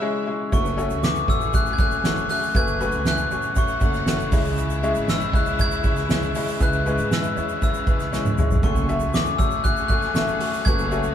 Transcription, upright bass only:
0.53 0.88 F#1 loud
0.91 1.26 C#2 medium
1.28 1.75 A1 loud
1.79 2.26 F#1 medium
2.55 2.90 F#1 loud
2.93 3.29 C#2 loud
3.31 3.78 A1 medium
3.81 4.29 F#1 loud
4.32 4.92 C#2 loud
4.96 5.31 G#1 loud
5.34 5.81 C#2 medium
5.84 6.31 C#2 medium
6.60 6.96 C#2 loud
6.98 7.34 G#2 loud
7.37 7.84 E2 medium
7.87 8.34 C#2 medium
8.63 8.99 F#1 loud
9.01 9.37 C#2 medium
9.39 9.86 A1 loud
9.90 10.37 F#1 medium
10.66 11.01 F#1 loud
11.04 11.15 C#2 medium

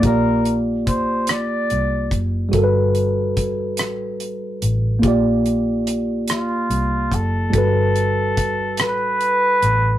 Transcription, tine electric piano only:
0.00 2.47 A#3 soft
0.00 2.49 F4 soft
0.05 2.50 G4 soft
0.05 2.51 D5 medium
2.49 4.97 G3 medium
2.49 4.98 F#4 medium
2.54 5.00 A4 medium
2.54 2.62 A#4 soft
2.64 5.05 B4 medium
4.99 7.47 A#3 medium
4.99 7.49 F4 soft
5.05 7.50 G4 medium
5.05 7.52 D5 medium
7.50 9.98 G3 medium
7.50 9.98 F#4 soft
7.55 9.98 A4 soft
7.55 9.98 B4 medium

